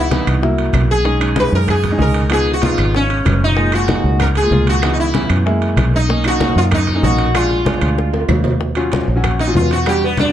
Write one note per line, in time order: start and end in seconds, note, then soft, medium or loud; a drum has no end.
0.00 0.21 C#2 medium
0.00 0.26 E4 medium
0.10 0.42 E3 medium
0.10 0.42 B3 medium
0.10 0.42 D#4 medium
0.10 high bongo medium
0.10 high conga medium
0.10 high timbale medium
0.27 0.71 C2 medium
0.27 high timbale medium
0.27 claves medium
0.42 0.93 F#3 medium
0.42 0.93 A#3 medium
0.42 0.93 E4 loud
0.42 high bongo medium
0.42 high conga soft
0.58 high bongo soft
0.58 high conga soft
0.58 high timbale medium
0.73 1.47 B1 medium
0.73 high bongo soft
0.73 low bongo medium
0.73 high conga medium
0.73 high timbale medium
0.73 claves medium
0.91 1.39 G#4 loud
0.91 high bongo soft
1.04 1.16 G#3 medium
1.04 1.16 C#4 medium
1.04 1.16 D#4 medium
1.04 high bongo medium
1.04 high conga soft
1.20 1.32 G#3 medium
1.20 1.32 C#4 medium
1.20 1.32 D#4 medium
1.20 high bongo soft
1.20 high conga soft
1.20 high timbale medium
1.20 claves medium
1.36 1.75 G#3 medium
1.36 1.75 C#4 medium
1.36 1.75 D#4 medium
1.36 1.55 B4 medium
1.36 high bongo medium
1.36 high conga loud
1.36 high timbale medium
1.52 1.96 F#2 medium
1.52 1.69 A#4 loud
1.67 1.99 G#4 loud
1.67 high bongo medium
1.67 high conga soft
1.67 low conga medium
1.67 high timbale medium
1.67 claves medium
1.84 high bongo soft
1.84 high conga soft
1.84 low conga medium
1.84 high timbale medium
1.91 1.96 G#3 medium
1.91 1.97 C#4 medium
1.91 1.97 D#4 medium
1.98 2.73 C#2 loud
1.98 2.21 G#3 medium
1.98 2.21 C#4 medium
1.98 2.21 D#4 loud
1.98 2.30 A#4 medium
1.98 high bongo soft
1.98 low bongo medium
1.98 high conga medium
2.14 high bongo soft
2.14 high conga soft
2.14 high timbale medium
2.30 2.53 F3 medium
2.30 2.53 B3 medium
2.30 2.53 D#4 medium
2.30 2.53 G#4 medium
2.30 high bongo medium
2.30 high conga soft
2.30 high timbale loud
2.30 claves medium
2.47 high bongo soft
2.47 high conga soft
2.53 2.64 F#4 medium
2.62 3.06 F3 medium
2.62 3.07 B3 medium
2.62 3.07 D#4 medium
2.62 2.93 F4 medium
2.62 high bongo medium
2.62 high conga loud
2.62 high timbale medium
2.78 3.22 G#1 medium
2.78 high timbale loud
2.78 claves medium
2.95 3.44 C#4 medium
2.95 high bongo medium
2.95 high conga soft
3.10 high bongo soft
3.10 high conga soft
3.10 high timbale medium
3.25 3.99 F#1 medium
3.25 high bongo soft
3.25 low bongo medium
3.25 high conga medium
3.25 high timbale medium
3.25 low timbale medium
3.25 claves medium
3.41 3.72 D#4 medium
3.41 high bongo soft
3.57 3.68 G#3 medium
3.57 3.68 A#3 medium
3.57 3.69 F4 medium
3.57 high bongo medium
3.57 high conga soft
3.72 3.84 G#3 medium
3.72 3.84 A#3 medium
3.72 3.84 F4 medium
3.72 4.18 F#4 medium
3.72 high bongo soft
3.72 high conga soft
3.72 high timbale medium
3.72 claves medium
3.88 4.27 G#3 medium
3.88 4.27 A#3 medium
3.88 4.27 D#4 medium
3.88 high bongo medium
3.88 high conga loud
3.88 high timbale medium
4.04 4.48 C#2 medium
4.20 4.27 A#4 medium
4.20 high bongo medium
4.20 high conga soft
4.20 low conga medium
4.20 high timbale medium
4.20 claves medium
4.35 4.69 G#4 medium
4.35 high bongo soft
4.35 high conga soft
4.35 high timbale medium
4.43 4.49 G#3 medium
4.43 4.49 A#3 medium
4.43 4.49 F4 medium
4.51 5.25 C#2 medium
4.51 4.74 G#3 medium
4.51 4.74 A#3 medium
4.51 4.74 F4 medium
4.51 high bongo soft
4.51 low bongo medium
4.51 high conga medium
4.67 4.93 F#4 medium
4.67 high bongo soft
4.67 high conga soft
4.67 high timbale medium
4.82 5.05 E3 medium
4.82 5.06 B3 medium
4.82 5.06 D#4 medium
4.82 high bongo medium
4.82 high conga soft
4.82 high timbale medium
4.82 claves medium
4.93 4.99 D#4 medium
4.99 5.29 E4 medium
4.99 high bongo soft
4.99 high conga soft
5.14 5.46 E3 medium
5.14 5.46 B3 medium
5.14 5.46 C#4 medium
5.14 high bongo medium
5.14 high conga medium
5.14 high timbale medium
5.30 5.74 F#2 medium
5.30 high timbale medium
5.30 claves medium
5.46 5.97 G#3 medium
5.46 5.97 A#3 medium
5.46 5.97 E4 loud
5.46 high bongo medium
5.46 high conga soft
5.62 high bongo soft
5.62 high conga soft
5.62 high timbale medium
5.76 6.50 B1 medium
5.76 high bongo soft
5.76 low bongo medium
5.76 high conga loud
5.76 high timbale medium
5.76 claves medium
5.94 6.27 D#4 loud
5.94 high bongo soft
6.08 6.20 A#3 medium
6.08 6.20 C#4 medium
6.08 6.21 D#4 medium
6.08 high bongo medium
6.08 high conga soft
6.24 6.36 A#3 medium
6.24 6.36 C#4 medium
6.24 6.37 D#4 medium
6.24 6.57 F#4 loud
6.24 high bongo soft
6.24 high conga soft
6.24 high timbale medium
6.24 claves medium
6.40 6.79 A#3 medium
6.40 6.79 C#4 medium
6.40 6.79 D#4 medium
6.40 high bongo medium
6.40 high conga loud
6.40 high timbale medium
6.56 7.00 F#2 medium
6.56 6.63 F4 loud
6.71 7.04 D#4 loud
6.71 high bongo medium
6.71 high conga soft
6.71 low conga medium
6.71 high timbale loud
6.71 claves medium
6.87 high bongo soft
6.87 high conga soft
6.87 low conga medium
6.87 high timbale medium
6.95 7.01 A#3 medium
6.95 7.01 C#4 medium
6.95 7.01 D#4 medium
7.02 7.77 A#1 medium
7.02 7.25 A#3 medium
7.02 7.25 C#4 medium
7.02 7.26 D#4 medium
7.02 7.33 F#4 loud
7.02 high bongo soft
7.02 low bongo medium
7.02 high conga medium
7.19 high bongo soft
7.19 high conga soft
7.19 high timbale medium
7.34 7.57 G#3 medium
7.34 7.57 D4 medium
7.34 7.57 F4 medium
7.34 8.26 F4 medium
7.34 high bongo medium
7.34 high conga soft
7.34 high timbale loud
7.34 claves medium
7.51 high bongo soft
7.51 high conga soft
7.65 8.10 G#3 medium
7.65 8.10 D4 medium
7.65 8.10 F4 medium
7.65 high bongo medium
7.65 high conga loud
7.65 high timbale medium
7.81 8.26 D2 medium
7.81 high timbale medium
7.81 claves medium
7.98 high bongo medium
7.98 high conga soft
8.13 high bongo medium
8.13 high conga soft
8.13 high timbale medium
8.29 9.02 D#2 medium
8.29 low bongo medium
8.29 high conga medium
8.29 low timbale medium
8.29 claves medium
8.44 low bongo medium
8.44 high conga medium
8.44 low timbale loud
8.61 high bongo medium
8.61 high conga soft
8.75 9.04 F#3 medium
8.75 9.05 C#4 medium
8.75 9.05 F4 medium
8.75 high bongo soft
8.75 high conga soft
8.75 high timbale medium
8.75 claves soft
8.92 high bongo medium
8.92 high conga loud
8.92 high timbale medium
9.08 9.52 A#1 medium
9.16 9.38 F#3 medium
9.16 9.39 C#4 medium
9.16 9.39 F#4 loud
9.24 high bongo medium
9.24 high conga soft
9.24 low conga medium
9.24 high timbale medium
9.24 claves medium
9.39 9.56 D#4 medium
9.39 high bongo soft
9.39 high conga soft
9.39 high timbale medium
9.48 9.75 F#3 medium
9.48 9.75 C#4 medium
9.48 9.76 F4 medium
9.55 10.29 E2 medium
9.55 9.71 F4 medium
9.55 high bongo soft
9.55 low bongo medium
9.55 high conga medium
9.55 low timbale medium
9.70 9.88 F#4 medium
9.70 high bongo soft
9.70 high conga soft
9.70 high timbale medium
9.86 10.09 G3 medium
9.86 10.09 D4 medium
9.86 10.10 F#4 medium
9.86 10.03 G4 medium
9.86 high bongo medium
9.86 high conga soft
9.86 high timbale loud
9.86 claves medium
10.02 10.19 B3 medium
10.02 high bongo soft
10.02 high conga soft
10.17 10.32 G3 medium
10.17 10.32 D4 medium
10.17 10.32 F#4 medium
10.17 high bongo medium
10.17 high conga medium
10.17 high timbale medium